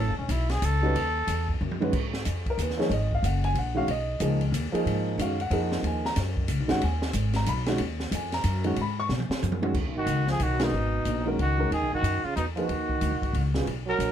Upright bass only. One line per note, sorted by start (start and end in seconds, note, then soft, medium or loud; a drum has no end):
0.07 0.18 F#1 medium
0.19 0.28 E1 medium
0.29 0.60 B1 medium
0.62 0.93 C#2 loud
0.95 1.26 D#2 medium
1.27 1.59 E2 loud
1.61 1.92 F#2 loud
1.93 2.24 G#2 medium
2.26 2.57 F2 medium
2.58 2.89 D#2 medium
2.89 3.21 G#1 medium
3.23 3.54 F#1 medium
3.55 3.87 A#1 medium
3.87 4.19 B1 medium
4.20 4.52 C#2 medium
4.52 4.72 D#2 loud
4.73 muted upright bass stroke soft
4.86 5.17 G#2 medium
5.18 5.50 F#2 loud
5.50 5.82 F2 loud
5.83 6.15 D#2 medium
6.16 6.48 F#2 medium
6.48 6.60 C#2 medium
6.60 6.70 B1 medium
6.71 6.81 G#1 medium
6.83 7.13 D#2 medium
7.14 7.45 G#1 loud
7.47 7.78 B1 loud
7.79 8.10 D#2 medium
8.11 8.43 F2 loud
8.44 8.76 F#2 loud
8.77 9.08 G#2 medium
9.09 9.28 B2 loud
9.29 muted upright bass stroke soft
9.42 9.74 F#2 loud
9.75 9.87 D#2 medium
9.87 9.96 B1 medium
9.97 10.06 G#1 medium
10.06 10.38 C#2 medium
10.39 10.71 B1 medium
10.72 11.04 G#1 medium
11.05 11.37 A#1 medium
11.39 11.70 C#2 medium
11.71 11.81 D#2 medium
11.81 11.92 B1 medium
11.93 12.02 G#1 medium
12.02 12.22 F#2 medium
12.24 muted upright bass stroke soft
12.36 12.68 E2 medium
12.69 13.00 D#2 medium
13.01 13.13 D2 medium
13.12 13.22 B1 medium
13.22 13.33 G#1 medium
13.33 13.65 C#2 medium
13.67 13.98 B1 medium
13.99 14.12 A#1 medium